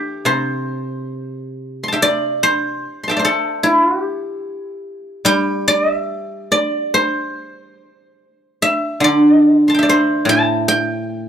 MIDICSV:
0, 0, Header, 1, 2, 480
1, 0, Start_track
1, 0, Tempo, 855920
1, 155, Time_signature, 2, 2, 24, 8
1, 1596, Tempo, 811908
1, 3516, Tempo, 837989
1, 5436, Tempo, 815217
1, 6521, End_track
2, 0, Start_track
2, 0, Title_t, "Guzheng"
2, 0, Program_c, 0, 107
2, 0, Note_on_c, 0, 52, 55
2, 0, Note_on_c, 0, 64, 72
2, 0, Note_on_c, 0, 67, 65
2, 0, Note_on_c, 0, 69, 83
2, 141, Note_on_c, 0, 48, 54
2, 145, Note_on_c, 0, 72, 72
2, 388, Note_off_c, 0, 52, 0
2, 451, Note_off_c, 0, 64, 0
2, 793, Note_off_c, 0, 69, 0
2, 1029, Note_on_c, 0, 84, 38
2, 1055, Note_on_c, 0, 81, 41
2, 1079, Note_on_c, 0, 79, 47
2, 1085, Note_on_c, 0, 76, 53
2, 1135, Note_on_c, 0, 74, 95
2, 1225, Note_off_c, 0, 67, 0
2, 1255, Note_off_c, 0, 72, 0
2, 1363, Note_on_c, 0, 72, 90
2, 1590, Note_off_c, 0, 48, 0
2, 1705, Note_off_c, 0, 84, 0
2, 1707, Note_on_c, 0, 84, 37
2, 1731, Note_off_c, 0, 81, 0
2, 1733, Note_on_c, 0, 81, 41
2, 1740, Note_off_c, 0, 79, 0
2, 1742, Note_on_c, 0, 79, 46
2, 1750, Note_off_c, 0, 76, 0
2, 1752, Note_on_c, 0, 76, 42
2, 1783, Note_off_c, 0, 74, 0
2, 1785, Note_on_c, 0, 74, 49
2, 1799, Note_off_c, 0, 72, 0
2, 1802, Note_on_c, 0, 72, 52
2, 1833, Note_on_c, 0, 69, 72
2, 2061, Note_on_c, 0, 64, 77
2, 2280, Note_off_c, 0, 64, 0
2, 2280, Note_on_c, 0, 67, 77
2, 2479, Note_off_c, 0, 84, 0
2, 2588, Note_off_c, 0, 81, 0
2, 2660, Note_off_c, 0, 79, 0
2, 2768, Note_off_c, 0, 76, 0
2, 2875, Note_off_c, 0, 74, 0
2, 2972, Note_off_c, 0, 72, 0
2, 3016, Note_on_c, 0, 55, 67
2, 3022, Note_on_c, 0, 79, 110
2, 3128, Note_off_c, 0, 69, 0
2, 3270, Note_on_c, 0, 74, 108
2, 3412, Note_off_c, 0, 74, 0
2, 3412, Note_on_c, 0, 76, 108
2, 3452, Note_off_c, 0, 67, 0
2, 3758, Note_on_c, 0, 74, 81
2, 3926, Note_off_c, 0, 79, 0
2, 4001, Note_on_c, 0, 72, 84
2, 4262, Note_off_c, 0, 76, 0
2, 4464, Note_off_c, 0, 55, 0
2, 4815, Note_off_c, 0, 74, 0
2, 4965, Note_on_c, 0, 76, 97
2, 5135, Note_off_c, 0, 72, 0
2, 5182, Note_on_c, 0, 50, 60
2, 5204, Note_on_c, 0, 74, 87
2, 5573, Note_on_c, 0, 84, 44
2, 5583, Note_on_c, 0, 81, 50
2, 5612, Note_on_c, 0, 79, 52
2, 5634, Note_off_c, 0, 76, 0
2, 5637, Note_on_c, 0, 76, 53
2, 5658, Note_off_c, 0, 74, 0
2, 5660, Note_on_c, 0, 74, 61
2, 5700, Note_on_c, 0, 72, 85
2, 5911, Note_on_c, 0, 45, 61
2, 5932, Note_off_c, 0, 81, 0
2, 5934, Note_on_c, 0, 81, 108
2, 6162, Note_off_c, 0, 79, 0
2, 6164, Note_on_c, 0, 79, 108
2, 6342, Note_off_c, 0, 84, 0
2, 6521, Note_off_c, 0, 45, 0
2, 6521, Note_off_c, 0, 50, 0
2, 6521, Note_off_c, 0, 72, 0
2, 6521, Note_off_c, 0, 74, 0
2, 6521, Note_off_c, 0, 76, 0
2, 6521, Note_off_c, 0, 79, 0
2, 6521, Note_off_c, 0, 81, 0
2, 6521, End_track
0, 0, End_of_file